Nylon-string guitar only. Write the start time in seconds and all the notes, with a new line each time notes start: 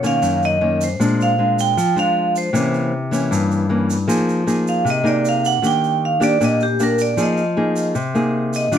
Already playing: B2
0.03 D#3 A#3 C#4
0.22 F#2
0.61 D#3 A#3 C#4
0.99 A#2 G#3 C4 D4
1.38 G#3 C4 D4
1.77 F3
1.96 F3 G#3 D4
2.53 C3 E3 A#3 C#4
3.11 E3 A#3 C#4
3.31 G2
3.69 E3 A#3 C#4
4.07 F3 A#3 D#4 G#4
4.47 A#3 D#4 G#4
4.85 C3
5.03 A#3 D#4 G#4
5.62 D#3 A#3 D4 G4
6.20 A#3 D4 G4
6.40 A#2 A#3 D4 G4
6.80 A#3 D4 G4
7.17 F3 A#3 D#4 G#4
7.57 A#3 D#4 G#4
7.95 C3
8.15 A#3 D#4 G#4
8.72 D#3 G3 D4 F4